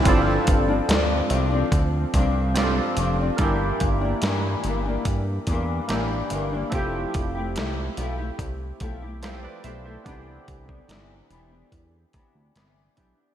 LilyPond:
<<
  \new Staff \with { instrumentName = "Synth keys" } { \time 4/4 \key g \mixolydian \tempo 4 = 72 << { r1 | r1 | r2. <a' c''>16 <b' d''>16 <c'' e''>16 <a' c''>16~ | <a' c''>16 r2. r8. | } \\ { <c' d' f' a'>2. <c' d' f' g' a'>4 | <bes d' e' g'>2. <bes d' e' g'>4 | <a c' e' g'>1 | <b d' ees' e' g'>2.~ <b d' ees' e' g'>8 <b d' e' g'>8 | } >> }
  \new Staff \with { instrumentName = "Nylon-string guitar" } { \time 4/4 \key g \mixolydian <g, f c' d'>8. <f c' d'>16 <g, f c' d'>8 <g, f c' d'>16 <f c' d'>8. <g, f c' d'>8 <g, f c' d'>8 <g, f c' d'>16 <f c' d'>16 | <g, e bes d'>8. <e bes d'>16 <g, e bes d'>8 <g, e bes d'>16 <e bes d'>8. <g, e bes d'>8 <g, e bes d'>8 <g, e bes d'>16 <e bes d'>16 | <f a e' g'>8. <a e' g'>16 <f a e' g'>8 <f a e' g'>16 <a e' g'>8. <f a e' g'>16 <a e' g'>16 <f a e' g'>8 <f a e' g'>16 <a e' g'>16 | <c e b d'>8. <e b d'>16 <c e b d'>8 <c e b d'>16 <e b d'>8. <c e b d'>8 <c e b d'>8 <c e b d'>16 <e b d'>16 | }
  \new Staff \with { instrumentName = "Analog synth bass" } { \clef bass \time 4/4 \key g \mixolydian g,,8 g,,8 d,8 c,8 d,8 c,4 f,,8 | g,,8 g,,8 g,8 g,,8 g,8 e,8 a,,8 g,,8 | f,,8 f,,8 c,8 b,,8 c,8 b,,4 b,,8 | c,8 c,8 g,,8 e,,8 e,8 d,16 d,16 g,,8 b,,16 r16 | }
  \new DrumStaff \with { instrumentName = "Drums" } \drummode { \time 4/4 <hh bd>8 <hh bd>8 <hh sn>8 hh8 <hh bd>8 <hh bd>8 <hh sn>8 hh8 | <hh bd>8 <hh bd>8 <hh sn>8 hh8 <hh bd>8 <hh bd>8 <hh sn>8 hh8 | <hh bd>8 <hh bd>8 <hh sn>8 hh8 <hh bd>8 <hh bd>8 <hh sn>8 hh8 | <hh bd>8 <hh bd>16 bd16 <hh sn>8 hh8 <hh bd>8 <hh bd>8 <hh sn>8 <hh bd>8 | }
>>